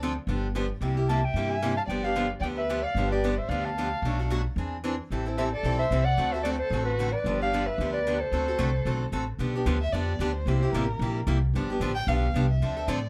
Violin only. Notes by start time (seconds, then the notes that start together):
1.09 E5
1.24 E5
1.50 E5
1.76 F5
1.87 D5
2.03 D5
2.40 D5
2.56 B4
2.82 D5
3.10 B4
3.37 C5
3.48 D5
3.63 F5
5.37 C5
5.52 A4
5.78 C5
6.04 D5
6.32 C5
6.42 A4
6.58 A4
6.85 F#4
7.13 B4
7.42 D5
7.66 B4
7.92 B4
8.19 A4
9.81 E5
9.92 D5
10.35 C5
10.73 A#4
11.95 G5
12.08 F5
12.50 E5
12.88 D5